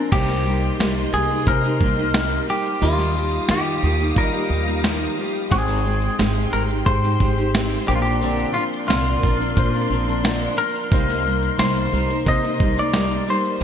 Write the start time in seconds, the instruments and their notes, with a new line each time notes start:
Already playing: steel-string acoustic guitar F3 C4 D4 A#4, grand piano A#3 D4 C5 D5 F5 G#5 A#5
0.12 upright bass C2, steel-string acoustic guitar C3 G3 A#3 G4, grand piano A#3 D#4 C5, clean electric guitar G4, string section A#4 D#5 C6, kick, crash, shaker
0.30 snare, shaker
0.45 steel-string acoustic guitar G3 A#3 D#4 G4, shaker
0.63 shaker
0.79 upright bass C2, steel-string acoustic guitar C3 G3 A#3 D#4 G4, snare, shaker
0.97 shaker
1.12 upright bass C2, steel-string acoustic guitar G3 A#3 D#4 G4, clean electric guitar G#4, shaker
1.30 steel-string acoustic guitar A#3 D#4 G4, shaker
1.47 upright bass C3, grand piano A#3 D#4 C5, clean electric guitar A#4, kick, shaker
1.64 steel-string acoustic guitar A#3 D#4 G4, shaker
1.80 upright bass C2, steel-string acoustic guitar G3 A#3 D#4 G4, kick, shaker
1.97 steel-string acoustic guitar A#3 D#4 G4, shaker
2.14 steel-string acoustic guitar C3 G3 A#3 D#4 G4, snare, shaker
2.31 shaker
2.47 steel-string acoustic guitar G3 A#3 D#4 G4, clean electric guitar G4, shaker
2.65 shaker
2.80 upright bass D#2, steel-string acoustic guitar D#3 F3 A#3 D#4 G4, grand piano G3 F4 D#5, clean electric guitar F4, string section G4 F5 D#6, shaker
2.98 snare, shaker
3.15 steel-string acoustic guitar F3 A#3 D#4 G4, shaker
3.31 shaker
3.48 upright bass F2, steel-string acoustic guitar D#3 F3 A#3 D#4 G4, clean electric guitar G4, snare, shaker
3.65 shaker
3.82 upright bass D#2, steel-string acoustic guitar F3 A#3 D#4 G4, shaker
3.99 steel-string acoustic guitar A#3 D#4 G4, shaker
4.16 upright bass D#3, grand piano G3 F4 D5, clean electric guitar A#4, kick, shaker
4.24 grand piano D#5
4.33 steel-string acoustic guitar A#3 D#4 G4, shaker
4.49 upright bass D#2, steel-string acoustic guitar F3 A#3 D#4 G4, shaker
4.65 steel-string acoustic guitar A#3 D#4 G4, shaker
4.83 steel-string acoustic guitar D#3 F3 A#3 D#4 G4, snare, shaker
5.00 shaker
5.17 steel-string acoustic guitar F3 A#3 D#4 G4, shaker
5.34 shaker
5.50 upright bass G#1, grand piano G#3 C5 G5, steel-string acoustic guitar G#3 C4 D#4, string section G#3 G5 C6, clean electric guitar G#4, kick, shaker
5.68 snare, shaker
5.84 steel-string acoustic guitar G#3 C4 D#4, shaker
6.01 shaker
6.18 upright bass G#1, steel-string acoustic guitar G#3 C4 D#4 G4, snare, shaker
6.36 shaker
6.52 upright bass G#1, steel-string acoustic guitar G#3 C4 D#4 G4, clean electric guitar A#4, shaker
6.69 steel-string acoustic guitar C4 D#4 G4, shaker
6.86 upright bass G#2, grand piano G#3 G4 C5, clean electric guitar C5, kick, shaker
7.03 steel-string acoustic guitar C4 D#4 G4, shaker
7.20 upright bass G#1, steel-string acoustic guitar G#3 C4 D#4 G4, kick, shaker
7.37 steel-string acoustic guitar C4 D#4 G4, shaker
7.54 steel-string acoustic guitar G#3 C4 D#4 G4, snare, shaker
7.71 shaker
7.87 upright bass A#1, steel-string acoustic guitar F3 C4 D4 A#4, grand piano A#3 D4 C5, clean electric guitar G4, string section A#4 D5, shaker
7.95 clean electric guitar F4
8.02 clean electric guitar G4, shaker
8.06 shaker
8.21 steel-string acoustic guitar A#2 D3 F3 C4 D4 A#4, shaker
8.39 shaker
8.54 steel-string acoustic guitar F3 C4 D4 A#4, clean electric guitar F4, shaker
8.73 shaker
8.87 upright bass C2, steel-string acoustic guitar A#2 D3 F3 C4 D4 A#4, clean electric guitar F4, snare, shaker
9.06 shaker
9.21 upright bass A#1, steel-string acoustic guitar F3 C4 D4 A#4, kick, shaker
9.38 steel-string acoustic guitar F3 C4 D4 A#4, shaker
9.56 upright bass A#2, grand piano A#3 D4 C5, kick, shaker
9.72 steel-string acoustic guitar F3 C4 D4 A#4, shaker
9.89 upright bass A#1, steel-string acoustic guitar F3 C4 D4 A#4, shaker
10.06 steel-string acoustic guitar F3 C4 D4 A#4, shaker
10.22 steel-string acoustic guitar A#2 D3 F3 C4 D4 A#4, snare, shaker
10.41 shaker
10.57 steel-string acoustic guitar F3 C4 D4 A#4, clean electric guitar A#4, shaker
10.76 shaker
10.91 upright bass C2, steel-string acoustic guitar C3 G3 A#3 D#4 A#4, grand piano A#3 D#4 C5, string section D#4 A#4, kick, shaker
11.09 snare, shaker
11.25 steel-string acoustic guitar G3 A#3 D#4 A#4, shaker
11.42 shaker
11.58 upright bass C2, steel-string acoustic guitar C3 G3 A#3 D#4 A#4, clean electric guitar C5, snare, shaker
11.76 shaker
11.92 upright bass C2, steel-string acoustic guitar G3 A#3 D#4 A#4, shaker
12.10 steel-string acoustic guitar A#3 D#4 A#4, shaker
12.25 upright bass C3, grand piano A#3 D#4 C5, clean electric guitar D#5, kick, shaker
12.43 steel-string acoustic guitar A#3 D#4 A#4, shaker
12.60 upright bass C2, steel-string acoustic guitar G3 A#3 D#4 A#4, kick, shaker
12.76 steel-string acoustic guitar A#3 D#4 A#4, clean electric guitar D5, shaker
12.93 steel-string acoustic guitar C3 G3 A#3 D#4 A#4, snare, shaker
13.10 shaker
13.27 steel-string acoustic guitar G3 A#3 D#4 A#4, clean electric guitar C5, shaker
13.45 shaker
13.60 steel-string acoustic guitar D#3 F3